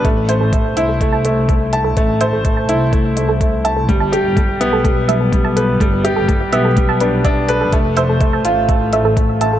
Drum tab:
HH |xxxxxxxx|xxxxxxxx|xxxxxxxx|xxxxxxxx|
BD |o-o-o-o-|o-o-o-o-|o-o-o-o-|o-o-o-o-|

HH |xxxxxxxx|
BD |o-o-o-o-|